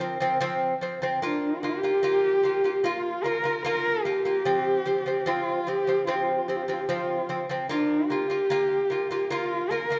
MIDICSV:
0, 0, Header, 1, 3, 480
1, 0, Start_track
1, 0, Tempo, 807537
1, 728, Time_signature, 4, 2, 24, 8
1, 5940, End_track
2, 0, Start_track
2, 0, Title_t, "Horsehead fiddle"
2, 0, Program_c, 0, 110
2, 0, Note_on_c, 0, 70, 86
2, 258, Note_off_c, 0, 70, 0
2, 730, Note_on_c, 0, 62, 78
2, 963, Note_on_c, 0, 67, 106
2, 972, Note_off_c, 0, 62, 0
2, 1691, Note_on_c, 0, 65, 86
2, 1700, Note_off_c, 0, 67, 0
2, 1927, Note_on_c, 0, 70, 95
2, 1936, Note_off_c, 0, 65, 0
2, 2168, Note_off_c, 0, 70, 0
2, 2172, Note_on_c, 0, 70, 97
2, 2407, Note_on_c, 0, 67, 98
2, 2416, Note_off_c, 0, 70, 0
2, 3135, Note_on_c, 0, 65, 83
2, 3144, Note_off_c, 0, 67, 0
2, 3379, Note_on_c, 0, 67, 100
2, 3388, Note_off_c, 0, 65, 0
2, 3601, Note_off_c, 0, 67, 0
2, 3604, Note_on_c, 0, 65, 65
2, 3658, Note_on_c, 0, 67, 60
2, 3667, Note_off_c, 0, 65, 0
2, 3707, Note_on_c, 0, 65, 59
2, 3716, Note_off_c, 0, 67, 0
2, 3753, Note_on_c, 0, 67, 61
2, 3762, Note_off_c, 0, 65, 0
2, 3796, Note_on_c, 0, 65, 61
2, 3805, Note_off_c, 0, 67, 0
2, 3848, Note_on_c, 0, 67, 65
2, 3857, Note_off_c, 0, 65, 0
2, 3901, Note_on_c, 0, 65, 63
2, 3910, Note_off_c, 0, 67, 0
2, 3941, Note_on_c, 0, 67, 71
2, 3950, Note_off_c, 0, 65, 0
2, 4002, Note_on_c, 0, 65, 70
2, 4010, Note_off_c, 0, 67, 0
2, 4045, Note_on_c, 0, 67, 71
2, 4054, Note_off_c, 0, 65, 0
2, 4092, Note_on_c, 0, 65, 80
2, 4101, Note_off_c, 0, 67, 0
2, 4329, Note_off_c, 0, 65, 0
2, 4574, Note_on_c, 0, 62, 87
2, 4803, Note_on_c, 0, 67, 87
2, 4812, Note_off_c, 0, 62, 0
2, 5491, Note_off_c, 0, 67, 0
2, 5491, Note_on_c, 0, 67, 67
2, 5530, Note_on_c, 0, 65, 93
2, 5539, Note_off_c, 0, 67, 0
2, 5770, Note_on_c, 0, 70, 88
2, 5779, Note_off_c, 0, 65, 0
2, 5940, Note_off_c, 0, 70, 0
2, 5940, End_track
3, 0, Start_track
3, 0, Title_t, "Lute"
3, 0, Program_c, 1, 24
3, 0, Note_on_c, 1, 53, 81
3, 6, Note_on_c, 1, 60, 89
3, 99, Note_off_c, 1, 53, 0
3, 103, Note_off_c, 1, 60, 0
3, 121, Note_on_c, 1, 53, 88
3, 129, Note_on_c, 1, 60, 98
3, 221, Note_off_c, 1, 53, 0
3, 225, Note_off_c, 1, 60, 0
3, 241, Note_on_c, 1, 53, 108
3, 246, Note_on_c, 1, 60, 121
3, 436, Note_off_c, 1, 53, 0
3, 439, Note_off_c, 1, 60, 0
3, 483, Note_on_c, 1, 53, 68
3, 490, Note_on_c, 1, 60, 82
3, 582, Note_off_c, 1, 53, 0
3, 585, Note_off_c, 1, 60, 0
3, 605, Note_on_c, 1, 53, 76
3, 613, Note_on_c, 1, 60, 82
3, 703, Note_off_c, 1, 53, 0
3, 707, Note_off_c, 1, 60, 0
3, 727, Note_on_c, 1, 58, 85
3, 733, Note_on_c, 1, 65, 96
3, 919, Note_off_c, 1, 58, 0
3, 923, Note_off_c, 1, 65, 0
3, 969, Note_on_c, 1, 58, 64
3, 976, Note_on_c, 1, 65, 80
3, 1065, Note_off_c, 1, 58, 0
3, 1068, Note_off_c, 1, 65, 0
3, 1090, Note_on_c, 1, 58, 63
3, 1096, Note_on_c, 1, 65, 70
3, 1185, Note_off_c, 1, 58, 0
3, 1188, Note_off_c, 1, 65, 0
3, 1205, Note_on_c, 1, 58, 87
3, 1212, Note_on_c, 1, 65, 98
3, 1399, Note_off_c, 1, 58, 0
3, 1402, Note_off_c, 1, 65, 0
3, 1447, Note_on_c, 1, 58, 57
3, 1456, Note_on_c, 1, 65, 69
3, 1544, Note_off_c, 1, 58, 0
3, 1548, Note_off_c, 1, 65, 0
3, 1571, Note_on_c, 1, 58, 58
3, 1578, Note_on_c, 1, 65, 65
3, 1666, Note_off_c, 1, 58, 0
3, 1669, Note_off_c, 1, 65, 0
3, 1688, Note_on_c, 1, 58, 89
3, 1698, Note_on_c, 1, 65, 97
3, 1880, Note_off_c, 1, 58, 0
3, 1885, Note_off_c, 1, 65, 0
3, 1928, Note_on_c, 1, 58, 64
3, 1935, Note_on_c, 1, 65, 80
3, 2024, Note_off_c, 1, 58, 0
3, 2028, Note_off_c, 1, 65, 0
3, 2043, Note_on_c, 1, 58, 68
3, 2052, Note_on_c, 1, 65, 79
3, 2142, Note_off_c, 1, 58, 0
3, 2146, Note_off_c, 1, 65, 0
3, 2167, Note_on_c, 1, 58, 96
3, 2174, Note_on_c, 1, 65, 101
3, 2360, Note_off_c, 1, 58, 0
3, 2364, Note_off_c, 1, 65, 0
3, 2409, Note_on_c, 1, 58, 70
3, 2416, Note_on_c, 1, 65, 72
3, 2505, Note_off_c, 1, 58, 0
3, 2508, Note_off_c, 1, 65, 0
3, 2527, Note_on_c, 1, 58, 66
3, 2534, Note_on_c, 1, 65, 64
3, 2624, Note_off_c, 1, 58, 0
3, 2627, Note_off_c, 1, 65, 0
3, 2648, Note_on_c, 1, 53, 91
3, 2653, Note_on_c, 1, 60, 94
3, 2840, Note_off_c, 1, 53, 0
3, 2843, Note_off_c, 1, 60, 0
3, 2886, Note_on_c, 1, 53, 72
3, 2895, Note_on_c, 1, 60, 75
3, 2984, Note_off_c, 1, 53, 0
3, 2988, Note_off_c, 1, 60, 0
3, 3007, Note_on_c, 1, 53, 63
3, 3016, Note_on_c, 1, 60, 70
3, 3104, Note_off_c, 1, 53, 0
3, 3109, Note_off_c, 1, 60, 0
3, 3126, Note_on_c, 1, 53, 94
3, 3133, Note_on_c, 1, 60, 99
3, 3320, Note_off_c, 1, 53, 0
3, 3323, Note_off_c, 1, 60, 0
3, 3369, Note_on_c, 1, 53, 61
3, 3376, Note_on_c, 1, 60, 74
3, 3465, Note_off_c, 1, 53, 0
3, 3469, Note_off_c, 1, 60, 0
3, 3491, Note_on_c, 1, 53, 61
3, 3499, Note_on_c, 1, 60, 72
3, 3586, Note_off_c, 1, 53, 0
3, 3590, Note_off_c, 1, 60, 0
3, 3610, Note_on_c, 1, 53, 87
3, 3617, Note_on_c, 1, 60, 103
3, 3802, Note_off_c, 1, 53, 0
3, 3805, Note_off_c, 1, 60, 0
3, 3853, Note_on_c, 1, 53, 67
3, 3860, Note_on_c, 1, 60, 77
3, 3947, Note_off_c, 1, 53, 0
3, 3951, Note_off_c, 1, 60, 0
3, 3971, Note_on_c, 1, 53, 74
3, 3978, Note_on_c, 1, 60, 78
3, 4066, Note_off_c, 1, 53, 0
3, 4070, Note_off_c, 1, 60, 0
3, 4094, Note_on_c, 1, 53, 96
3, 4100, Note_on_c, 1, 60, 100
3, 4284, Note_off_c, 1, 53, 0
3, 4286, Note_off_c, 1, 60, 0
3, 4334, Note_on_c, 1, 53, 68
3, 4338, Note_on_c, 1, 60, 77
3, 4427, Note_off_c, 1, 53, 0
3, 4429, Note_off_c, 1, 60, 0
3, 4455, Note_on_c, 1, 53, 73
3, 4463, Note_on_c, 1, 60, 76
3, 4548, Note_off_c, 1, 53, 0
3, 4552, Note_off_c, 1, 60, 0
3, 4574, Note_on_c, 1, 58, 93
3, 4582, Note_on_c, 1, 65, 98
3, 4763, Note_off_c, 1, 58, 0
3, 4767, Note_off_c, 1, 65, 0
3, 4815, Note_on_c, 1, 58, 73
3, 4824, Note_on_c, 1, 65, 77
3, 4908, Note_off_c, 1, 58, 0
3, 4913, Note_off_c, 1, 65, 0
3, 4932, Note_on_c, 1, 58, 67
3, 4939, Note_on_c, 1, 65, 73
3, 5026, Note_off_c, 1, 58, 0
3, 5030, Note_off_c, 1, 65, 0
3, 5053, Note_on_c, 1, 58, 99
3, 5061, Note_on_c, 1, 65, 102
3, 5243, Note_off_c, 1, 58, 0
3, 5247, Note_off_c, 1, 65, 0
3, 5290, Note_on_c, 1, 58, 65
3, 5300, Note_on_c, 1, 65, 73
3, 5386, Note_off_c, 1, 58, 0
3, 5390, Note_off_c, 1, 65, 0
3, 5413, Note_on_c, 1, 58, 66
3, 5420, Note_on_c, 1, 65, 74
3, 5507, Note_off_c, 1, 58, 0
3, 5510, Note_off_c, 1, 65, 0
3, 5531, Note_on_c, 1, 58, 93
3, 5539, Note_on_c, 1, 65, 100
3, 5722, Note_off_c, 1, 58, 0
3, 5726, Note_off_c, 1, 65, 0
3, 5770, Note_on_c, 1, 58, 75
3, 5778, Note_on_c, 1, 65, 76
3, 5865, Note_off_c, 1, 58, 0
3, 5869, Note_off_c, 1, 65, 0
3, 5887, Note_on_c, 1, 58, 70
3, 5895, Note_on_c, 1, 65, 79
3, 5940, Note_off_c, 1, 58, 0
3, 5940, Note_off_c, 1, 65, 0
3, 5940, End_track
0, 0, End_of_file